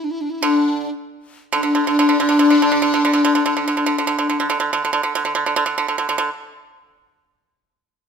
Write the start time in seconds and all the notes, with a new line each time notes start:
0.04 D4
0.11 E4
0.21 D4
0.30 E4
0.41 D3 D4
1.53 D3 D4
1.63 D3
1.75 D3
1.87 D3
1.99 D3
2.09 D3
2.20 D3
2.29 D3
2.39 D3
2.50 D3
2.62 D3
2.72 D3
2.82 D3
2.94 D3
3.05 D3
3.13 D3
3.25 D3
3.35 D3
3.46 D3
3.57 D3
3.68 D3
3.77 D3
3.86 D3
3.98 D3
4.07 D3
4.19 D3
4.30 D3
4.40 D3
4.50 D3
4.60 D3
4.73 D3
4.85 D3
4.93 D3
5.03 D3
5.15 D3
5.25 D3
5.35 D3
5.46 D3
5.56 D3
5.66 D3
5.78 D3
5.88 D3
5.98 D3
6.09 D3
6.18 D3